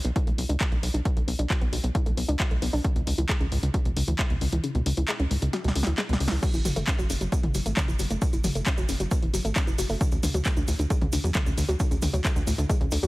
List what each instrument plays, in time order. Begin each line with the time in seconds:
0.04 analog synth bass B1, synth arpeggio sound B3, closed hi-hat
0.16 synth arpeggio sound E4, kick, closed hi-hat
0.27 analog synth bass B1, synth arpeggio sound A3, closed hi-hat
0.38 analog synth bass B1, synth arpeggio sound B3, open hi-hat
0.49 analog synth bass C#2, synth arpeggio sound D4, closed hi-hat
0.60 synth arpeggio sound F#4, kick, clap, closed hi-hat
0.72 analog synth bass B1, synth arpeggio sound A3, closed hi-hat
0.83 analog synth bass B1, synth arpeggio sound B3, open hi-hat
0.94 analog synth bass B1, synth arpeggio sound D4, closed hi-hat
1.05 synth arpeggio sound B3, kick, closed hi-hat
1.16 analog synth bass B1, synth arpeggio sound A3, closed hi-hat
1.27 analog synth bass B1, synth arpeggio sound B3, open hi-hat
1.39 analog synth bass B1, synth arpeggio sound D4, closed hi-hat
1.50 synth arpeggio sound F#4, kick, clap, closed hi-hat
1.61 analog synth bass B1, synth arpeggio sound B3, closed hi-hat
1.72 analog synth bass B1, synth arpeggio sound F#3, open hi-hat
1.84 analog synth bass B1, synth arpeggio sound B3, closed hi-hat
1.95 synth arpeggio sound E4, kick, closed hi-hat
2.06 analog synth bass B1, synth arpeggio sound A3, closed hi-hat
2.17 analog synth bass B1, synth arpeggio sound B3, open hi-hat
2.28 analog synth bass C#2, synth arpeggio sound D4, closed hi-hat
2.40 synth arpeggio sound F#4, kick, clap, closed hi-hat
2.51 analog synth bass B1, synth arpeggio sound A3, closed hi-hat
2.62 analog synth bass B1, synth arpeggio sound B3, open hi-hat
2.73 analog synth bass B1, synth arpeggio sound D4, open hi-hat
2.84 synth arpeggio sound C#3, kick, closed hi-hat
2.96 analog synth bass C#2, synth arpeggio sound B2, closed hi-hat
3.07 analog synth bass C#2, synth arpeggio sound C#3, open hi-hat
3.18 analog synth bass C#2, synth arpeggio sound E3, closed hi-hat
3.29 synth arpeggio sound G#3, kick, clap, closed hi-hat
3.40 analog synth bass C#2, synth arpeggio sound C#3, closed hi-hat
3.52 analog synth bass C#2, synth arpeggio sound G#2, open hi-hat
3.63 analog synth bass C#2, synth arpeggio sound C#3, closed hi-hat
3.74 synth arpeggio sound F#3, kick, closed hi-hat
3.85 analog synth bass C#2, synth arpeggio sound B2, closed hi-hat
3.96 analog synth bass C#2, synth arpeggio sound C#3, open hi-hat
4.08 analog synth bass D2, synth arpeggio sound E3, closed hi-hat
4.19 synth arpeggio sound G#3, kick, clap, closed hi-hat
4.30 analog synth bass C#2, synth arpeggio sound B2, closed hi-hat
4.41 analog synth bass C#2, synth arpeggio sound C#3, open hi-hat
4.52 analog synth bass C#2, synth arpeggio sound E3, closed hi-hat
4.64 synth arpeggio sound C#3, closed hi-hat
4.75 analog synth bass C#2, synth arpeggio sound B2, closed hi-hat
4.86 analog synth bass C#2, synth arpeggio sound C#3, open hi-hat
4.97 analog synth bass C#2, synth arpeggio sound E3, closed hi-hat
5.08 synth arpeggio sound G#3, clap, closed hi-hat
5.19 analog synth bass C#2, synth arpeggio sound C#3, closed hi-hat
5.31 analog synth bass C#2, synth arpeggio sound G#2, open hi-hat
5.42 analog synth bass C#2, synth arpeggio sound C#3, closed hi-hat
5.53 synth arpeggio sound F#3, snare, closed hi-hat
5.64 analog synth bass C#2, synth arpeggio sound B2, snare, closed hi-hat
5.75 analog synth bass C#2, synth arpeggio sound C#3, open hi-hat
5.83 analog synth bass D2, synth arpeggio sound E3, snare, closed hi-hat
5.98 synth arpeggio sound G#3, snare, clap, closed hi-hat
6.09 analog synth bass C#2, synth arpeggio sound B2, snare, closed hi-hat
6.20 analog synth bass C#2, synth arpeggio sound C#3, open hi-hat
6.28 analog synth bass C#2, synth arpeggio sound E3, snare, open hi-hat
6.42 synth arpeggio sound F#3, kick, closed hi-hat, crash, maracas
6.54 analog synth bass F#1, synth arpeggio sound E3, closed hi-hat, maracas
6.65 analog synth bass F#1, synth arpeggio sound F#3, open hi-hat, mid tom, maracas
6.76 analog synth bass F#1, synth arpeggio sound A3, closed hi-hat, mid tom, maracas
6.87 synth arpeggio sound C#4, kick, clap, closed hi-hat, maracas
6.99 analog synth bass F#1, synth arpeggio sound F#3, closed hi-hat, maracas
7.10 analog synth bass F#1, synth arpeggio sound C#3, open hi-hat, maracas
7.21 analog synth bass F#1, synth arpeggio sound F#3, closed hi-hat, maracas
7.32 synth arpeggio sound B3, kick, closed hi-hat, maracas
7.43 analog synth bass F#1, synth arpeggio sound E3, closed hi-hat, mid tom
7.54 analog synth bass F#1, synth arpeggio sound F#3, open hi-hat, maracas
7.66 analog synth bass G#1, synth arpeggio sound A3, closed hi-hat, maracas
7.77 synth arpeggio sound C#4, kick, clap, closed hi-hat, mid tom, maracas
7.88 analog synth bass F#1, synth arpeggio sound E3, closed hi-hat, maracas
7.99 analog synth bass F#1, synth arpeggio sound F#3, open hi-hat, maracas
8.10 analog synth bass F#1, synth arpeggio sound A3, closed hi-hat, maracas
8.22 synth arpeggio sound F#3, kick, closed hi-hat, maracas
8.33 analog synth bass F#1, synth arpeggio sound E3, closed hi-hat, maracas
8.44 analog synth bass F#1, synth arpeggio sound F#3, open hi-hat, mid tom, maracas
8.55 analog synth bass F#1, synth arpeggio sound A3, closed hi-hat, maracas
8.66 synth arpeggio sound C#4, kick, clap, closed hi-hat, maracas
8.77 analog synth bass F#1, synth arpeggio sound F#3, closed hi-hat, maracas
8.89 analog synth bass F#1, synth arpeggio sound C#3, open hi-hat, maracas
9.00 analog synth bass F#1, synth arpeggio sound F#3, closed hi-hat, maracas
9.11 synth arpeggio sound B3, kick, closed hi-hat, maracas
9.22 analog synth bass F#1, synth arpeggio sound E3, closed hi-hat
9.34 analog synth bass F#1, synth arpeggio sound F#3, open hi-hat, maracas
9.45 analog synth bass G#1, synth arpeggio sound A3, closed hi-hat, maracas
9.56 synth arpeggio sound C#4, kick, clap, closed hi-hat, maracas
9.67 analog synth bass F#1, synth arpeggio sound E3, closed hi-hat, maracas
9.78 analog synth bass F#1, synth arpeggio sound F#3, open hi-hat, maracas
9.89 analog synth bass F#1, synth arpeggio sound A3, open hi-hat, maracas
10.01 synth arpeggio sound D3, kick, closed hi-hat, maracas
10.12 analog synth bass D2, synth arpeggio sound C#3, closed hi-hat, maracas
10.23 analog synth bass D2, synth arpeggio sound D3, open hi-hat, mid tom, maracas
10.34 analog synth bass D2, synth arpeggio sound F#3, closed hi-hat, mid tom, maracas
10.45 synth arpeggio sound A3, kick, clap, closed hi-hat, maracas
10.57 analog synth bass D2, synth arpeggio sound D3, closed hi-hat, maracas
10.68 analog synth bass D2, synth arpeggio sound A2, open hi-hat, maracas
10.79 analog synth bass D2, synth arpeggio sound D3, closed hi-hat, maracas
10.90 synth arpeggio sound G#3, kick, closed hi-hat, maracas
11.02 analog synth bass D2, synth arpeggio sound C#3, closed hi-hat, mid tom
11.12 analog synth bass D2, synth arpeggio sound D3, open hi-hat, maracas
11.24 analog synth bass E2, synth arpeggio sound F#3, closed hi-hat, maracas
11.34 synth arpeggio sound A3, kick, clap, closed hi-hat, mid tom, maracas
11.46 analog synth bass D2, synth arpeggio sound C#3, closed hi-hat, maracas
11.57 analog synth bass D2, synth arpeggio sound D3, open hi-hat, maracas
11.69 analog synth bass D2, synth arpeggio sound F#3, closed hi-hat, maracas
11.80 synth arpeggio sound D3, kick, closed hi-hat, maracas
11.91 analog synth bass D2, synth arpeggio sound C#3, closed hi-hat, maracas
12.02 analog synth bass D2, synth arpeggio sound D3, open hi-hat, mid tom, maracas
12.13 analog synth bass D2, synth arpeggio sound F#3, closed hi-hat, maracas
12.25 synth arpeggio sound A3, kick, clap, closed hi-hat, maracas
12.36 analog synth bass D2, synth arpeggio sound D3, closed hi-hat, maracas
12.47 analog synth bass D2, synth arpeggio sound A2, open hi-hat, maracas
12.58 analog synth bass D2, synth arpeggio sound D3, closed hi-hat, maracas
12.69 synth arpeggio sound G#3, kick, closed hi-hat, maracas
12.81 analog synth bass D2, synth arpeggio sound C#3, closed hi-hat
12.91 analog synth bass D2, synth arpeggio sound D3, open hi-hat, maracas
13.03 analog synth bass E2, synth arpeggio sound F#3, closed hi-hat, maracas